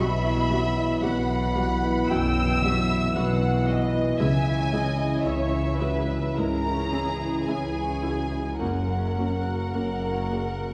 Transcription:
Already playing: F#3 B3
0.00 B1 B2 E3 B3 E5 B5
0.25 E4
0.35 F#3
0.50 F#3 G3 F#4
0.69 E4
0.77 E4
1.02 B1 B2 F#3 G3 F#4 B4 F#5 B5
1.30 E4
1.55 G3 F#4
1.75 B4
1.85 E4
2.09 B1 F#2 B2 F#3 B3 E4 G5 E6
2.37 E4
2.47 F#3
2.62 F#3 G3 F#4 E5
2.82 E4
2.90 E4
3.15 B1 B2 F#3 G3 F#4 B4 F#5
3.43 E4
3.50 F#4
3.68 G3 F#4 D#5
3.85 B4
3.95 E4
4.19 C#2 C#3 G#3 C#4 E4 E5 G#5
4.47 E4
4.54 C#4
4.72 G#3 C#4 E4 D#5
4.88 E4
4.98 E4
5.24 C#2 C#3 E3 G#3 C#4 E4 G#4 C#5 E5
5.51 E4
5.61 C#5
5.79 G#3 E4 F#4 B4
5.98 G#4
6.09 E4
6.36 C#2 G#2 C#3 G#3 E4 A#4 A#5
6.66 E4
6.73 C#4
6.92 G#3 C#4 E4 G#4
7.09 E4
7.20 E4
7.46 C#2 C#3 G#3 C#4 E4 G#4 G#5
7.75 E4
7.83 C#5
8.02 G#3 E4 F#4
8.20 G#4
8.32 E4
8.58 F#1 F#2 C#3 A#3 F#4 A#4 F#5
8.88 F#4
8.98 C#4
9.17 A#3 C#4 F#4
9.35 F#4
9.46 F#4
9.73 F#1 F#2 A#3 C#4 F#4 A#4
10.04 F#4
10.12 C#5
10.30 A#3 F#4 G#4
10.49 A#4
10.60 F#4

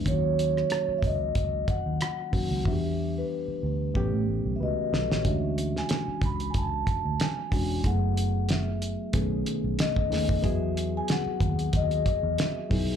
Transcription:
0.04 D#2 D#3 F#3 A#3 C#4 E4 C#5, kick, closed hi-hat
0.13 F#4
0.39 closed hi-hat
0.57 cross-stick
0.70 cross-stick, closed hi-hat
0.88 muted fingered electric bass stroke
0.98 E5
1.03 C#2 D#5, kick, closed hi-hat
1.35 C#2, kick, closed hi-hat
1.68 F#5, kick, closed hi-hat
1.86 D#2
2.01 F#5, cross-stick, closed hi-hat
2.32 D#3 F#3 A#3 C#4 F#4, muted fingered electric bass stroke, kick, open hi-hat
2.51 C#2
2.64 E2 E3 G3 B3 D4 F#4 E5, kick
2.73 G4
3.18 B4
3.48 muted fingered electric bass stroke
3.63 D2
3.94 A1 E3 A3 B3 C#4 G4, kick
4.13 A2
4.28 A1
4.45 B1
4.56 C#2 E5
4.60 F#4 B4 D#5
4.92 B1 A4 D#5, snare
5.10 A1 G4 C#5, snare
5.24 D2 E3 G#3 C#4 D4 F#4, kick, closed hi-hat
5.28 E5
5.58 closed hi-hat
5.76 G#5, snare
5.89 snare, closed hi-hat
6.08 muted fingered electric bass stroke
6.22 C#2 B5, kick, closed hi-hat
6.40 closed hi-hat
6.50 G#5
6.54 C#2 A5, kick, closed hi-hat
6.87 kick, closed hi-hat
7.05 D2
7.20 G#5, snare, closed hi-hat
7.51 E1 E3 G#3 C#4 D4 F#4, kick, open hi-hat
7.83 F#1 F#3 A3 B3 E4 G#4 F#5, kick, closed hi-hat
8.17 closed hi-hat
8.49 E5, snare, closed hi-hat
8.82 closed hi-hat
9.13 B1 D#3 A3 B3 C#4 G#4, kick, closed hi-hat
9.46 closed hi-hat
9.64 B1
9.79 D#5, snare, closed hi-hat
9.96 kick
10.10 D#2 D#3 A3 B3 C#4 G#4, snare, open hi-hat
10.29 kick
10.42 E2 F#3 B3 E4 F#4 G#4 E5, kick, closed hi-hat
10.77 closed hi-hat
10.97 G#5
11.08 F#5, snare, closed hi-hat
11.26 muted fingered electric bass stroke
11.40 D#2, kick, closed hi-hat
11.59 closed hi-hat
11.73 D#2 D#5, kick, closed hi-hat
11.91 closed hi-hat
12.06 kick, closed hi-hat
12.23 E2
12.38 snare, closed hi-hat
12.69 B1 F#3 B3 D#4 E4 G#4, kick, open hi-hat

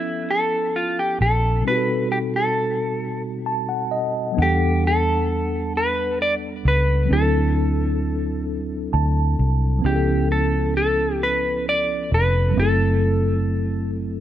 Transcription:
Already playing: F3 B3 C#4 E4 A4
0.31 A4
0.76 F4
0.99 G4
1.21 A#1 A4
1.61 B2 G3
1.65 C4 D#4 F#4 B4
1.71 G4
1.78 A4
2.12 G4
2.36 A4
3.46 A5
3.69 F#5
3.91 D#5
4.32 F#3 B3
4.37 E2 G3 D4 F#5
4.42 G4 A4
4.87 A4
5.77 B4
6.22 D5
6.65 C#2 B4
7.05 F#3 C4
7.11 D2 D4 E4 A4
7.16 G#4
7.22 A4
8.93 D2 A5
9.39 C2
9.79 F3 B3
9.85 C#2 C#4 E4 G4
9.90 G#4
9.96 A4
10.32 A4
10.77 A4
11.23 B4
11.69 D5
12.12 F1 B4
12.51 F#3 A3
12.57 F#1 C4 E4 A4
12.61 A4

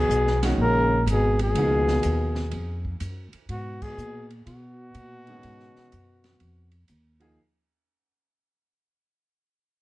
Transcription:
Already playing: B2 G#4
0.09 B1, hi-hat pedal
0.27 snare
0.43 D#3 G#3 C#4 F#4, snare, ride
0.58 A#1 C#3 A#4
1.06 G#1, hi-hat pedal, ride
1.11 B2 G#4
1.39 G#4, ride
1.44 B2
1.55 C#2 F3 A#3 D#4 G#4, ride
1.88 snare
2.03 D#2, hi-hat pedal, ride
2.35 snare
2.51 F2, ride
2.85 kick
3.00 F#2, hi-hat pedal, ride
3.33 muted upright bass stroke, ride
3.49 G#2 B2 F#4, ride
3.82 B2 G#4, kick, crash
3.98 A#2, hi-hat pedal
4.30 ride
4.46 B2 F#4, ride
4.94 A#2, hi-hat pedal, ride
5.27 D#3 G#3 C#4 F#4, ride
5.43 G#2, ride
5.60 snare
5.76 muted upright bass stroke, snare
5.92 F#2, hi-hat pedal, ride
6.24 snare, ride
6.40 F2, ride
6.71 ride
6.88 D#2, hi-hat pedal, ride
7.20 F3 A#3 D#4 G#4, ride

